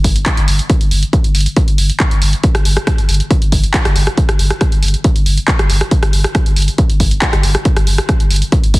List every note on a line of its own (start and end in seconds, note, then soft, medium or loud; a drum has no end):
0.04 0.16 G1 loud
0.04 kick medium
0.04 open hi-hat loud
0.16 closed hi-hat medium
0.26 kick loud
0.26 clap loud
0.26 closed hi-hat medium
0.37 0.47 G1 medium
0.37 closed hi-hat medium
0.48 0.59 G1 loud
0.48 open hi-hat loud
0.59 closed hi-hat medium
0.70 kick loud
0.70 closed hi-hat medium
0.81 0.91 G1 medium
0.81 closed hi-hat medium
0.91 1.03 G1 loud
0.91 open hi-hat loud
1.03 closed hi-hat medium
1.13 kick loud
1.13 closed hi-hat medium
1.24 1.34 G1 medium
1.24 closed hi-hat medium
1.35 1.46 G1 loud
1.35 open hi-hat loud
1.41 closed hi-hat medium
1.46 closed hi-hat medium
1.56 kick loud
1.56 closed hi-hat medium
1.68 1.78 G1 medium
1.68 closed hi-hat medium
1.78 1.89 G1 medium
1.78 open hi-hat loud
1.90 closed hi-hat medium
2.00 kick loud
2.00 clap loud
2.00 closed hi-hat medium
2.11 2.21 G1 medium
2.11 closed hi-hat medium
2.22 2.33 G1 loud
2.22 open hi-hat loud
2.33 closed hi-hat soft
2.44 kick loud
2.44 closed hi-hat medium
2.55 2.65 G1 medium
2.55 cross-stick medium
2.55 closed hi-hat soft
2.65 2.76 G1 loud
2.65 open hi-hat loud
2.77 cross-stick medium
2.77 closed hi-hat medium
2.87 kick loud
2.87 cross-stick loud
2.87 closed hi-hat medium
2.98 3.08 G1 medium
2.98 closed hi-hat soft
3.09 3.20 G1 loud
3.09 open hi-hat loud
3.14 closed hi-hat medium
3.20 closed hi-hat soft
3.31 kick loud
3.31 closed hi-hat medium
3.42 3.52 G1 medium
3.42 closed hi-hat medium
3.52 3.63 G1 loud
3.52 kick medium
3.52 open hi-hat loud
3.64 closed hi-hat medium
3.74 kick loud
3.74 clap loud
3.74 closed hi-hat medium
3.85 3.95 G1 medium
3.85 cross-stick loud
3.85 closed hi-hat soft
3.96 4.07 G1 loud
3.96 open hi-hat loud
4.07 cross-stick medium
4.07 closed hi-hat soft
4.17 kick loud
4.17 closed hi-hat medium
4.29 4.39 G1 medium
4.29 cross-stick medium
4.29 closed hi-hat medium
4.39 4.50 G1 loud
4.39 open hi-hat loud
4.50 cross-stick medium
4.50 closed hi-hat medium
4.61 kick loud
4.61 cross-stick medium
4.61 closed hi-hat medium
4.72 4.82 G1 medium
4.72 closed hi-hat medium
4.83 4.94 G1 loud
4.83 open hi-hat loud
4.88 closed hi-hat medium
4.94 closed hi-hat medium
5.04 kick loud
5.04 closed hi-hat medium
5.16 5.26 G1 medium
5.16 closed hi-hat medium
5.26 5.37 G1 loud
5.26 open hi-hat loud
5.38 closed hi-hat medium
5.48 kick loud
5.48 clap loud
5.48 closed hi-hat medium
5.59 5.69 G1 medium
5.59 cross-stick medium
5.59 closed hi-hat soft
5.70 5.81 G1 loud
5.70 open hi-hat loud
5.81 cross-stick medium
5.81 closed hi-hat medium
5.91 kick loud
5.91 closed hi-hat medium
6.03 6.13 G1 medium
6.03 cross-stick medium
6.03 closed hi-hat medium
6.13 6.24 G1 loud
6.13 open hi-hat medium
6.24 cross-stick medium
6.24 closed hi-hat medium
6.35 kick loud
6.35 cross-stick medium
6.35 closed hi-hat medium
6.46 6.56 G1 medium
6.46 closed hi-hat medium
6.56 6.68 G1 loud
6.56 open hi-hat loud
6.62 closed hi-hat medium
6.68 closed hi-hat medium
6.78 kick loud
6.78 closed hi-hat medium
6.90 6.99 G1 medium
6.90 closed hi-hat medium
7.00 7.11 G1 loud
7.00 kick medium
7.00 open hi-hat loud
7.11 closed hi-hat medium
7.22 kick loud
7.22 clap loud
7.22 closed hi-hat medium
7.33 7.43 G1 medium
7.33 cross-stick medium
7.33 closed hi-hat soft
7.43 7.55 G1 loud
7.43 open hi-hat loud
7.55 cross-stick medium
7.55 closed hi-hat medium
7.65 kick loud
7.65 closed hi-hat medium
7.77 7.87 G1 medium
7.77 cross-stick medium
7.77 closed hi-hat medium
7.87 7.98 G1 loud
7.87 open hi-hat loud
7.98 cross-stick medium
7.98 closed hi-hat medium
8.09 kick loud
8.09 cross-stick medium
8.09 closed hi-hat medium
8.20 8.30 G1 medium
8.20 closed hi-hat medium
8.31 8.42 G1 loud
8.31 open hi-hat loud
8.36 closed hi-hat medium
8.42 closed hi-hat medium
8.52 kick loud
8.52 closed hi-hat medium
8.64 8.73 G1 medium
8.64 closed hi-hat medium
8.74 8.80 G1 loud
8.74 kick medium
8.74 open hi-hat loud